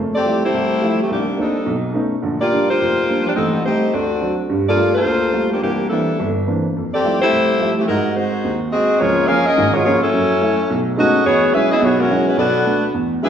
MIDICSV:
0, 0, Header, 1, 3, 480
1, 0, Start_track
1, 0, Tempo, 281822
1, 1867, Time_signature, 4, 2, 24, 8
1, 22637, End_track
2, 0, Start_track
2, 0, Title_t, "Saxophone section"
2, 0, Program_c, 0, 65
2, 258, Note_on_c, 0, 74, 94
2, 262, Note_on_c, 0, 60, 81
2, 262, Note_on_c, 0, 69, 79
2, 263, Note_on_c, 0, 67, 76
2, 695, Note_off_c, 0, 74, 0
2, 697, Note_off_c, 0, 60, 0
2, 697, Note_off_c, 0, 69, 0
2, 698, Note_off_c, 0, 67, 0
2, 761, Note_on_c, 0, 57, 80
2, 762, Note_on_c, 0, 64, 84
2, 765, Note_on_c, 0, 72, 94
2, 768, Note_on_c, 0, 67, 87
2, 1702, Note_off_c, 0, 57, 0
2, 1703, Note_off_c, 0, 64, 0
2, 1704, Note_off_c, 0, 72, 0
2, 1706, Note_off_c, 0, 67, 0
2, 1731, Note_on_c, 0, 67, 67
2, 1733, Note_on_c, 0, 60, 62
2, 1737, Note_on_c, 0, 57, 59
2, 1741, Note_on_c, 0, 52, 56
2, 1881, Note_off_c, 0, 67, 0
2, 1882, Note_off_c, 0, 60, 0
2, 1884, Note_off_c, 0, 57, 0
2, 1886, Note_off_c, 0, 52, 0
2, 1909, Note_on_c, 0, 62, 69
2, 1910, Note_on_c, 0, 51, 65
2, 1911, Note_on_c, 0, 58, 64
2, 1914, Note_on_c, 0, 67, 73
2, 2337, Note_off_c, 0, 51, 0
2, 2337, Note_off_c, 0, 62, 0
2, 2338, Note_off_c, 0, 58, 0
2, 2340, Note_off_c, 0, 67, 0
2, 2405, Note_on_c, 0, 69, 69
2, 2406, Note_on_c, 0, 62, 58
2, 2410, Note_on_c, 0, 55, 58
2, 2418, Note_on_c, 0, 63, 61
2, 2858, Note_off_c, 0, 62, 0
2, 2860, Note_off_c, 0, 55, 0
2, 3153, Note_off_c, 0, 69, 0
2, 3160, Note_off_c, 0, 63, 0
2, 4099, Note_on_c, 0, 67, 79
2, 4101, Note_on_c, 0, 65, 80
2, 4102, Note_on_c, 0, 58, 81
2, 4102, Note_on_c, 0, 74, 98
2, 4541, Note_off_c, 0, 67, 0
2, 4542, Note_off_c, 0, 65, 0
2, 4543, Note_off_c, 0, 58, 0
2, 4543, Note_off_c, 0, 74, 0
2, 4602, Note_on_c, 0, 72, 102
2, 4603, Note_on_c, 0, 67, 80
2, 4605, Note_on_c, 0, 65, 87
2, 4608, Note_on_c, 0, 58, 86
2, 5481, Note_off_c, 0, 67, 0
2, 5481, Note_off_c, 0, 72, 0
2, 5483, Note_off_c, 0, 65, 0
2, 5484, Note_off_c, 0, 58, 0
2, 5547, Note_on_c, 0, 67, 76
2, 5554, Note_on_c, 0, 62, 62
2, 5557, Note_on_c, 0, 58, 57
2, 5558, Note_on_c, 0, 53, 63
2, 5627, Note_off_c, 0, 67, 0
2, 5633, Note_off_c, 0, 62, 0
2, 5634, Note_off_c, 0, 58, 0
2, 5636, Note_off_c, 0, 53, 0
2, 5718, Note_on_c, 0, 63, 72
2, 5720, Note_on_c, 0, 60, 63
2, 5723, Note_on_c, 0, 55, 68
2, 5723, Note_on_c, 0, 69, 79
2, 6164, Note_off_c, 0, 63, 0
2, 6165, Note_off_c, 0, 60, 0
2, 6167, Note_off_c, 0, 55, 0
2, 6167, Note_off_c, 0, 69, 0
2, 6229, Note_on_c, 0, 72, 76
2, 6235, Note_on_c, 0, 57, 67
2, 6235, Note_on_c, 0, 67, 69
2, 6237, Note_on_c, 0, 63, 70
2, 6661, Note_off_c, 0, 72, 0
2, 6665, Note_off_c, 0, 57, 0
2, 6665, Note_off_c, 0, 63, 0
2, 6665, Note_off_c, 0, 67, 0
2, 6709, Note_on_c, 0, 66, 63
2, 6712, Note_on_c, 0, 60, 59
2, 6712, Note_on_c, 0, 69, 61
2, 6716, Note_on_c, 0, 74, 73
2, 7469, Note_off_c, 0, 66, 0
2, 7470, Note_off_c, 0, 60, 0
2, 7470, Note_off_c, 0, 69, 0
2, 7472, Note_off_c, 0, 74, 0
2, 7951, Note_on_c, 0, 69, 78
2, 7958, Note_on_c, 0, 65, 81
2, 7958, Note_on_c, 0, 74, 89
2, 7962, Note_on_c, 0, 58, 72
2, 8389, Note_off_c, 0, 69, 0
2, 8393, Note_off_c, 0, 65, 0
2, 8394, Note_off_c, 0, 74, 0
2, 8395, Note_off_c, 0, 58, 0
2, 8421, Note_on_c, 0, 72, 93
2, 8431, Note_on_c, 0, 58, 78
2, 8434, Note_on_c, 0, 65, 75
2, 8434, Note_on_c, 0, 69, 85
2, 9312, Note_off_c, 0, 72, 0
2, 9317, Note_off_c, 0, 58, 0
2, 9318, Note_off_c, 0, 65, 0
2, 9318, Note_off_c, 0, 69, 0
2, 9408, Note_on_c, 0, 67, 71
2, 9417, Note_on_c, 0, 62, 65
2, 9419, Note_on_c, 0, 53, 63
2, 9419, Note_on_c, 0, 58, 62
2, 9558, Note_off_c, 0, 62, 0
2, 9563, Note_off_c, 0, 58, 0
2, 9570, Note_off_c, 0, 67, 0
2, 9575, Note_on_c, 0, 52, 70
2, 9578, Note_on_c, 0, 62, 66
2, 9583, Note_off_c, 0, 53, 0
2, 9583, Note_on_c, 0, 58, 68
2, 9590, Note_on_c, 0, 67, 85
2, 10015, Note_off_c, 0, 52, 0
2, 10017, Note_off_c, 0, 62, 0
2, 10020, Note_off_c, 0, 58, 0
2, 10024, Note_off_c, 0, 67, 0
2, 10043, Note_on_c, 0, 69, 72
2, 10045, Note_on_c, 0, 55, 66
2, 10047, Note_on_c, 0, 62, 60
2, 10049, Note_on_c, 0, 64, 62
2, 10763, Note_off_c, 0, 69, 0
2, 10764, Note_off_c, 0, 55, 0
2, 10765, Note_off_c, 0, 62, 0
2, 10766, Note_off_c, 0, 64, 0
2, 11813, Note_on_c, 0, 67, 79
2, 11821, Note_on_c, 0, 69, 87
2, 11823, Note_on_c, 0, 74, 103
2, 11825, Note_on_c, 0, 60, 82
2, 12244, Note_off_c, 0, 67, 0
2, 12248, Note_off_c, 0, 69, 0
2, 12249, Note_off_c, 0, 74, 0
2, 12250, Note_off_c, 0, 60, 0
2, 12284, Note_on_c, 0, 57, 85
2, 12289, Note_on_c, 0, 72, 105
2, 12293, Note_on_c, 0, 64, 90
2, 12293, Note_on_c, 0, 67, 84
2, 13166, Note_off_c, 0, 57, 0
2, 13169, Note_off_c, 0, 72, 0
2, 13171, Note_off_c, 0, 64, 0
2, 13171, Note_off_c, 0, 67, 0
2, 13253, Note_on_c, 0, 57, 62
2, 13258, Note_on_c, 0, 60, 58
2, 13260, Note_on_c, 0, 52, 64
2, 13267, Note_on_c, 0, 67, 72
2, 13423, Note_off_c, 0, 57, 0
2, 13425, Note_off_c, 0, 60, 0
2, 13426, Note_off_c, 0, 52, 0
2, 13428, Note_on_c, 0, 70, 81
2, 13429, Note_off_c, 0, 67, 0
2, 13430, Note_on_c, 0, 56, 72
2, 13430, Note_on_c, 0, 63, 73
2, 13434, Note_on_c, 0, 66, 70
2, 13864, Note_off_c, 0, 70, 0
2, 13865, Note_off_c, 0, 56, 0
2, 13865, Note_off_c, 0, 63, 0
2, 13867, Note_off_c, 0, 66, 0
2, 13907, Note_on_c, 0, 56, 69
2, 13911, Note_on_c, 0, 66, 63
2, 13911, Note_on_c, 0, 72, 74
2, 13917, Note_on_c, 0, 63, 65
2, 14671, Note_off_c, 0, 56, 0
2, 14673, Note_off_c, 0, 66, 0
2, 14673, Note_off_c, 0, 72, 0
2, 14676, Note_off_c, 0, 63, 0
2, 14845, Note_on_c, 0, 60, 75
2, 14848, Note_on_c, 0, 68, 76
2, 14851, Note_on_c, 0, 66, 78
2, 14861, Note_on_c, 0, 75, 91
2, 15292, Note_off_c, 0, 60, 0
2, 15294, Note_off_c, 0, 68, 0
2, 15295, Note_off_c, 0, 66, 0
2, 15301, Note_off_c, 0, 75, 0
2, 15330, Note_on_c, 0, 65, 88
2, 15331, Note_on_c, 0, 73, 92
2, 15339, Note_on_c, 0, 68, 85
2, 15340, Note_on_c, 0, 58, 79
2, 15783, Note_off_c, 0, 68, 0
2, 15803, Note_on_c, 0, 68, 85
2, 15803, Note_on_c, 0, 77, 107
2, 15806, Note_on_c, 0, 61, 83
2, 15806, Note_on_c, 0, 70, 84
2, 15808, Note_off_c, 0, 65, 0
2, 15808, Note_off_c, 0, 73, 0
2, 15813, Note_off_c, 0, 58, 0
2, 16098, Note_off_c, 0, 77, 0
2, 16099, Note_off_c, 0, 68, 0
2, 16100, Note_off_c, 0, 61, 0
2, 16100, Note_off_c, 0, 70, 0
2, 16118, Note_on_c, 0, 61, 94
2, 16120, Note_on_c, 0, 75, 103
2, 16121, Note_on_c, 0, 68, 90
2, 16123, Note_on_c, 0, 70, 89
2, 16568, Note_off_c, 0, 68, 0
2, 16581, Note_on_c, 0, 65, 74
2, 16588, Note_off_c, 0, 61, 0
2, 16588, Note_on_c, 0, 58, 73
2, 16588, Note_on_c, 0, 68, 75
2, 16589, Note_off_c, 0, 75, 0
2, 16591, Note_off_c, 0, 70, 0
2, 16592, Note_on_c, 0, 73, 94
2, 16750, Note_off_c, 0, 68, 0
2, 16753, Note_off_c, 0, 58, 0
2, 16758, Note_off_c, 0, 73, 0
2, 16762, Note_off_c, 0, 65, 0
2, 16771, Note_on_c, 0, 68, 83
2, 16774, Note_on_c, 0, 58, 79
2, 16779, Note_on_c, 0, 73, 99
2, 16782, Note_on_c, 0, 65, 78
2, 17041, Note_off_c, 0, 68, 0
2, 17042, Note_off_c, 0, 58, 0
2, 17045, Note_off_c, 0, 73, 0
2, 17047, Note_off_c, 0, 65, 0
2, 17064, Note_on_c, 0, 61, 81
2, 17065, Note_on_c, 0, 64, 78
2, 17069, Note_on_c, 0, 69, 91
2, 17072, Note_on_c, 0, 54, 82
2, 18136, Note_off_c, 0, 64, 0
2, 18428, Note_off_c, 0, 61, 0
2, 18431, Note_off_c, 0, 69, 0
2, 18432, Note_off_c, 0, 54, 0
2, 18704, Note_on_c, 0, 61, 85
2, 18707, Note_on_c, 0, 75, 95
2, 18719, Note_on_c, 0, 69, 80
2, 18721, Note_on_c, 0, 66, 87
2, 19137, Note_off_c, 0, 61, 0
2, 19138, Note_off_c, 0, 75, 0
2, 19145, Note_off_c, 0, 69, 0
2, 19146, Note_off_c, 0, 66, 0
2, 19178, Note_on_c, 0, 73, 104
2, 19182, Note_on_c, 0, 59, 82
2, 19182, Note_on_c, 0, 68, 76
2, 19183, Note_on_c, 0, 66, 82
2, 19613, Note_off_c, 0, 73, 0
2, 19615, Note_off_c, 0, 59, 0
2, 19615, Note_off_c, 0, 66, 0
2, 19615, Note_off_c, 0, 68, 0
2, 19659, Note_on_c, 0, 71, 88
2, 19661, Note_on_c, 0, 68, 82
2, 19661, Note_on_c, 0, 76, 97
2, 19662, Note_on_c, 0, 61, 78
2, 19930, Note_off_c, 0, 68, 0
2, 19940, Note_off_c, 0, 71, 0
2, 19941, Note_off_c, 0, 61, 0
2, 19941, Note_off_c, 0, 76, 0
2, 19944, Note_on_c, 0, 75, 88
2, 19950, Note_on_c, 0, 68, 84
2, 19953, Note_on_c, 0, 59, 83
2, 19958, Note_on_c, 0, 64, 81
2, 20108, Note_off_c, 0, 75, 0
2, 20112, Note_off_c, 0, 68, 0
2, 20113, Note_off_c, 0, 59, 0
2, 20116, Note_off_c, 0, 64, 0
2, 20157, Note_on_c, 0, 66, 75
2, 20158, Note_on_c, 0, 59, 72
2, 20158, Note_on_c, 0, 68, 77
2, 20158, Note_on_c, 0, 73, 83
2, 20417, Note_off_c, 0, 66, 0
2, 20428, Note_off_c, 0, 59, 0
2, 20428, Note_off_c, 0, 68, 0
2, 20428, Note_off_c, 0, 73, 0
2, 20433, Note_on_c, 0, 56, 73
2, 20436, Note_on_c, 0, 70, 79
2, 20438, Note_on_c, 0, 66, 73
2, 20444, Note_on_c, 0, 61, 74
2, 20878, Note_off_c, 0, 61, 0
2, 20879, Note_off_c, 0, 56, 0
2, 20881, Note_off_c, 0, 66, 0
2, 20898, Note_off_c, 0, 70, 0
2, 20898, Note_on_c, 0, 61, 71
2, 20899, Note_on_c, 0, 56, 71
2, 20901, Note_on_c, 0, 66, 66
2, 20903, Note_on_c, 0, 71, 82
2, 21075, Note_off_c, 0, 61, 0
2, 21076, Note_off_c, 0, 56, 0
2, 21077, Note_off_c, 0, 66, 0
2, 21078, Note_off_c, 0, 71, 0
2, 21094, Note_on_c, 0, 59, 80
2, 21097, Note_on_c, 0, 74, 80
2, 21099, Note_on_c, 0, 69, 76
2, 21100, Note_on_c, 0, 66, 79
2, 21993, Note_off_c, 0, 59, 0
2, 21994, Note_off_c, 0, 74, 0
2, 21996, Note_off_c, 0, 66, 0
2, 21996, Note_off_c, 0, 69, 0
2, 22532, Note_on_c, 0, 68, 90
2, 22533, Note_on_c, 0, 62, 88
2, 22540, Note_on_c, 0, 76, 96
2, 22542, Note_on_c, 0, 71, 91
2, 22637, Note_off_c, 0, 62, 0
2, 22637, Note_off_c, 0, 68, 0
2, 22637, Note_off_c, 0, 71, 0
2, 22637, Note_off_c, 0, 76, 0
2, 22637, End_track
3, 0, Start_track
3, 0, Title_t, "Upright piano"
3, 0, Program_c, 1, 0
3, 0, Note_on_c, 1, 41, 51
3, 0, Note_on_c, 1, 57, 57
3, 359, Note_off_c, 1, 57, 0
3, 363, Note_off_c, 1, 41, 0
3, 423, Note_on_c, 1, 53, 40
3, 431, Note_on_c, 1, 55, 41
3, 438, Note_on_c, 1, 57, 40
3, 446, Note_on_c, 1, 64, 46
3, 736, Note_off_c, 1, 53, 0
3, 740, Note_off_c, 1, 55, 0
3, 743, Note_off_c, 1, 57, 0
3, 747, Note_off_c, 1, 64, 0
3, 908, Note_on_c, 1, 36, 56
3, 1319, Note_off_c, 1, 36, 0
3, 1390, Note_on_c, 1, 55, 43
3, 1394, Note_on_c, 1, 53, 44
3, 1398, Note_on_c, 1, 57, 39
3, 1410, Note_on_c, 1, 64, 52
3, 1701, Note_off_c, 1, 55, 0
3, 1703, Note_off_c, 1, 53, 0
3, 1705, Note_off_c, 1, 57, 0
3, 1711, Note_off_c, 1, 64, 0
3, 1879, Note_on_c, 1, 36, 57
3, 2286, Note_off_c, 1, 36, 0
3, 2350, Note_on_c, 1, 58, 42
3, 2355, Note_on_c, 1, 60, 38
3, 2356, Note_on_c, 1, 62, 39
3, 2372, Note_on_c, 1, 63, 43
3, 2663, Note_off_c, 1, 58, 0
3, 2665, Note_off_c, 1, 60, 0
3, 2666, Note_off_c, 1, 62, 0
3, 2674, Note_off_c, 1, 63, 0
3, 2825, Note_on_c, 1, 35, 63
3, 3240, Note_off_c, 1, 35, 0
3, 3297, Note_on_c, 1, 57, 50
3, 3307, Note_on_c, 1, 59, 43
3, 3308, Note_on_c, 1, 61, 43
3, 3310, Note_on_c, 1, 63, 51
3, 3618, Note_off_c, 1, 57, 0
3, 3623, Note_off_c, 1, 59, 0
3, 3623, Note_off_c, 1, 61, 0
3, 3624, Note_off_c, 1, 63, 0
3, 3786, Note_on_c, 1, 50, 55
3, 3789, Note_on_c, 1, 34, 54
3, 4202, Note_off_c, 1, 50, 0
3, 4203, Note_off_c, 1, 34, 0
3, 4278, Note_on_c, 1, 55, 41
3, 4294, Note_on_c, 1, 58, 42
3, 4299, Note_on_c, 1, 62, 48
3, 4589, Note_off_c, 1, 55, 0
3, 4597, Note_off_c, 1, 58, 0
3, 4600, Note_off_c, 1, 62, 0
3, 4780, Note_on_c, 1, 29, 59
3, 5181, Note_off_c, 1, 29, 0
3, 5263, Note_on_c, 1, 55, 45
3, 5266, Note_on_c, 1, 58, 43
3, 5272, Note_on_c, 1, 62, 51
3, 5563, Note_off_c, 1, 55, 0
3, 5564, Note_off_c, 1, 58, 0
3, 5567, Note_off_c, 1, 62, 0
3, 5731, Note_on_c, 1, 45, 52
3, 5733, Note_on_c, 1, 33, 58
3, 6137, Note_off_c, 1, 45, 0
3, 6138, Note_off_c, 1, 33, 0
3, 6206, Note_on_c, 1, 55, 46
3, 6213, Note_on_c, 1, 57, 39
3, 6217, Note_on_c, 1, 60, 48
3, 6515, Note_off_c, 1, 55, 0
3, 6518, Note_off_c, 1, 57, 0
3, 6520, Note_off_c, 1, 60, 0
3, 6700, Note_on_c, 1, 38, 53
3, 7102, Note_off_c, 1, 38, 0
3, 7166, Note_on_c, 1, 54, 46
3, 7168, Note_on_c, 1, 60, 38
3, 7177, Note_on_c, 1, 62, 48
3, 7475, Note_off_c, 1, 54, 0
3, 7476, Note_off_c, 1, 60, 0
3, 7481, Note_off_c, 1, 62, 0
3, 7654, Note_on_c, 1, 43, 60
3, 7662, Note_on_c, 1, 55, 56
3, 8059, Note_off_c, 1, 43, 0
3, 8064, Note_off_c, 1, 55, 0
3, 8118, Note_on_c, 1, 55, 44
3, 8124, Note_on_c, 1, 57, 35
3, 8127, Note_on_c, 1, 58, 36
3, 8134, Note_on_c, 1, 65, 48
3, 8432, Note_off_c, 1, 55, 0
3, 8435, Note_off_c, 1, 57, 0
3, 8436, Note_off_c, 1, 58, 0
3, 8440, Note_off_c, 1, 65, 0
3, 8593, Note_on_c, 1, 38, 55
3, 9008, Note_off_c, 1, 38, 0
3, 9071, Note_on_c, 1, 55, 45
3, 9074, Note_on_c, 1, 57, 43
3, 9087, Note_on_c, 1, 58, 38
3, 9091, Note_on_c, 1, 65, 52
3, 9389, Note_off_c, 1, 55, 0
3, 9391, Note_off_c, 1, 57, 0
3, 9397, Note_off_c, 1, 58, 0
3, 9399, Note_off_c, 1, 65, 0
3, 9576, Note_on_c, 1, 36, 58
3, 9981, Note_off_c, 1, 36, 0
3, 10052, Note_on_c, 1, 52, 44
3, 10056, Note_on_c, 1, 58, 41
3, 10059, Note_on_c, 1, 60, 40
3, 10064, Note_on_c, 1, 62, 44
3, 10360, Note_off_c, 1, 52, 0
3, 10362, Note_off_c, 1, 58, 0
3, 10363, Note_off_c, 1, 60, 0
3, 10366, Note_off_c, 1, 62, 0
3, 10544, Note_on_c, 1, 31, 63
3, 10946, Note_off_c, 1, 31, 0
3, 11022, Note_on_c, 1, 52, 47
3, 11026, Note_on_c, 1, 58, 42
3, 11030, Note_on_c, 1, 60, 43
3, 11032, Note_on_c, 1, 62, 51
3, 11326, Note_off_c, 1, 52, 0
3, 11327, Note_off_c, 1, 58, 0
3, 11330, Note_off_c, 1, 60, 0
3, 11331, Note_off_c, 1, 62, 0
3, 11522, Note_on_c, 1, 41, 56
3, 11916, Note_off_c, 1, 41, 0
3, 11986, Note_on_c, 1, 55, 42
3, 11987, Note_on_c, 1, 53, 46
3, 11992, Note_on_c, 1, 57, 41
3, 11996, Note_on_c, 1, 64, 46
3, 12288, Note_off_c, 1, 55, 0
3, 12289, Note_off_c, 1, 53, 0
3, 12291, Note_off_c, 1, 57, 0
3, 12293, Note_off_c, 1, 64, 0
3, 12459, Note_on_c, 1, 36, 56
3, 12865, Note_off_c, 1, 36, 0
3, 12937, Note_on_c, 1, 53, 46
3, 12954, Note_on_c, 1, 64, 50
3, 12955, Note_on_c, 1, 55, 43
3, 12955, Note_on_c, 1, 57, 42
3, 13244, Note_off_c, 1, 53, 0
3, 13253, Note_off_c, 1, 55, 0
3, 13253, Note_off_c, 1, 57, 0
3, 13253, Note_off_c, 1, 64, 0
3, 13421, Note_on_c, 1, 44, 54
3, 13826, Note_off_c, 1, 44, 0
3, 13891, Note_on_c, 1, 56, 45
3, 13895, Note_on_c, 1, 60, 38
3, 13898, Note_on_c, 1, 66, 51
3, 14201, Note_off_c, 1, 56, 0
3, 14203, Note_off_c, 1, 60, 0
3, 14205, Note_off_c, 1, 66, 0
3, 14382, Note_on_c, 1, 39, 54
3, 14787, Note_off_c, 1, 39, 0
3, 14859, Note_on_c, 1, 60, 43
3, 14861, Note_on_c, 1, 56, 43
3, 14870, Note_on_c, 1, 66, 46
3, 15165, Note_off_c, 1, 60, 0
3, 15167, Note_off_c, 1, 56, 0
3, 15171, Note_off_c, 1, 66, 0
3, 15339, Note_on_c, 1, 37, 60
3, 15339, Note_on_c, 1, 53, 60
3, 15744, Note_off_c, 1, 37, 0
3, 15745, Note_off_c, 1, 53, 0
3, 15822, Note_on_c, 1, 53, 47
3, 15832, Note_on_c, 1, 58, 40
3, 15838, Note_on_c, 1, 61, 52
3, 16126, Note_off_c, 1, 53, 0
3, 16132, Note_off_c, 1, 58, 0
3, 16134, Note_off_c, 1, 61, 0
3, 16308, Note_on_c, 1, 44, 64
3, 16311, Note_on_c, 1, 32, 65
3, 16708, Note_off_c, 1, 44, 0
3, 16710, Note_off_c, 1, 32, 0
3, 16778, Note_on_c, 1, 53, 51
3, 16785, Note_on_c, 1, 58, 45
3, 16793, Note_on_c, 1, 61, 57
3, 17083, Note_off_c, 1, 53, 0
3, 17087, Note_off_c, 1, 58, 0
3, 17091, Note_off_c, 1, 61, 0
3, 17258, Note_on_c, 1, 42, 66
3, 17662, Note_off_c, 1, 42, 0
3, 17730, Note_on_c, 1, 54, 45
3, 17733, Note_on_c, 1, 57, 46
3, 17738, Note_on_c, 1, 64, 53
3, 18037, Note_off_c, 1, 54, 0
3, 18039, Note_off_c, 1, 57, 0
3, 18042, Note_off_c, 1, 64, 0
3, 18226, Note_on_c, 1, 35, 59
3, 18624, Note_off_c, 1, 35, 0
3, 18679, Note_on_c, 1, 56, 54
3, 18683, Note_on_c, 1, 57, 45
3, 18690, Note_on_c, 1, 59, 50
3, 18696, Note_on_c, 1, 63, 58
3, 18698, Note_on_c, 1, 61, 47
3, 18990, Note_off_c, 1, 56, 0
3, 18992, Note_off_c, 1, 57, 0
3, 18996, Note_off_c, 1, 59, 0
3, 18999, Note_off_c, 1, 63, 0
3, 19000, Note_off_c, 1, 61, 0
3, 19154, Note_on_c, 1, 40, 58
3, 19566, Note_off_c, 1, 40, 0
3, 19621, Note_on_c, 1, 54, 45
3, 19630, Note_on_c, 1, 56, 47
3, 19639, Note_on_c, 1, 64, 52
3, 19640, Note_on_c, 1, 61, 42
3, 19939, Note_off_c, 1, 54, 0
3, 19944, Note_off_c, 1, 56, 0
3, 19948, Note_off_c, 1, 64, 0
3, 19949, Note_off_c, 1, 61, 0
3, 20121, Note_on_c, 1, 47, 64
3, 20122, Note_on_c, 1, 35, 66
3, 20527, Note_off_c, 1, 35, 0
3, 20527, Note_off_c, 1, 47, 0
3, 20592, Note_on_c, 1, 56, 43
3, 20596, Note_on_c, 1, 54, 51
3, 20597, Note_on_c, 1, 61, 49
3, 20601, Note_on_c, 1, 64, 52
3, 20902, Note_off_c, 1, 56, 0
3, 20904, Note_off_c, 1, 54, 0
3, 20905, Note_off_c, 1, 61, 0
3, 20907, Note_off_c, 1, 64, 0
3, 21071, Note_on_c, 1, 35, 62
3, 21479, Note_off_c, 1, 35, 0
3, 21549, Note_on_c, 1, 57, 45
3, 21557, Note_on_c, 1, 59, 44
3, 21558, Note_on_c, 1, 62, 56
3, 21859, Note_off_c, 1, 57, 0
3, 21863, Note_off_c, 1, 59, 0
3, 21863, Note_off_c, 1, 62, 0
3, 22035, Note_on_c, 1, 40, 64
3, 22439, Note_off_c, 1, 40, 0
3, 22522, Note_on_c, 1, 54, 50
3, 22523, Note_on_c, 1, 56, 46
3, 22526, Note_on_c, 1, 62, 48
3, 22534, Note_on_c, 1, 64, 55
3, 22637, Note_off_c, 1, 54, 0
3, 22637, Note_off_c, 1, 56, 0
3, 22637, Note_off_c, 1, 62, 0
3, 22637, Note_off_c, 1, 64, 0
3, 22637, End_track
0, 0, End_of_file